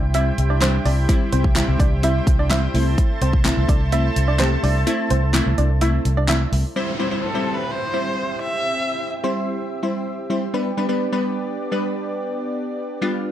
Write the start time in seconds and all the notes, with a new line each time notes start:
Already playing: C2 E4 G4 C5 G5
0.14 G3 C4 E4 E5, closed hi-hat
0.38 C2, closed hi-hat
0.50 D4 D5
0.61 G3 C4 D4 C5, snare, clap, closed hi-hat
0.85 C2 D4 D5, open hi-hat
1.09 G3 C4 E4, kick, closed hi-hat
1.32 C2 C4 C5, closed hi-hat
1.44 kick
1.55 G3 C4 E4, snare, clap, closed hi-hat
1.68 C2
1.80 C2 D4 D5, kick, closed hi-hat
2.03 G3 C4 E4 E5, closed hi-hat
2.27 C2, kick, closed hi-hat
2.39 D4 D5
2.50 G3 C4 E4 E5, snare, clap, closed hi-hat
2.74 C2 A3 C4 E4 A4 A5, open hi-hat
2.98 kick, closed hi-hat
3.21 C2 C4 C5, closed hi-hat
3.33 kick
3.45 A3 C4 E4, snare, clap, closed hi-hat
3.57 C2
3.69 C2 D4 D5, kick, closed hi-hat
3.92 A3 C4 E4 E5, closed hi-hat
4.16 C2, closed hi-hat
4.28 D4 D5
4.39 A3 C4 G4 C5, snare, clap, closed hi-hat
4.63 C2 D4 D5, open hi-hat
4.87 A3 C4 E4, closed hi-hat
5.10 C2 C4 C5, closed hi-hat
5.34 A3 C4 E4, snare, clap, closed hi-hat
5.46 C2
5.58 C2 D4 D5, closed hi-hat
5.81 A3 C4 E4 E5, closed hi-hat
6.05 C2, closed hi-hat
6.17 D4 D5
6.28 A3 C4 E4 E5, snare, clap, closed hi-hat
6.52 C2, open hi-hat
6.76 G3 C4 E4 G4 C5 E5, downlifter
6.99 G3 C4 E4 C5
7.11 G3 C4 E4 C5
7.24 A4
7.34 G3 C4 E4 C5
7.55 B4
7.71 C5
7.93 G3 C4 E4 C5
8.41 E5
9.24 G3 C4 E4 C5
9.83 G3 C4 E4 C5
10.30 G3 C4 E4 C5
10.54 G3 B3 D4 B4 D5
10.77 G3 B3 D4 B4
10.89 G3 B3 D4 B4
11.12 G3 B3 D4 B4
11.72 G3 B3 D4 B4
13.02 G3 B3 D4 F4